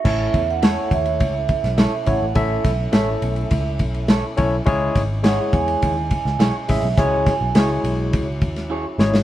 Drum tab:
CC |x---------------|----------------|----------------|----------------|
RD |--x-x-xxx-xxx-x-|x-x-x-xxx-xxx-x-|x-x-x-xxx-x-x-x-|x-x-x-x-x-xx----|
HH |----------------|----------------|--------------o-|p---------------|
SD |----o------oo---|--o-o-------o---|--o-o------oo---|--o-o------o--oo|
BD |o-o---o-o-o---o-|o-o-----o-o---o-|o-o---o-o-o---o-|o-o-----o-o-----|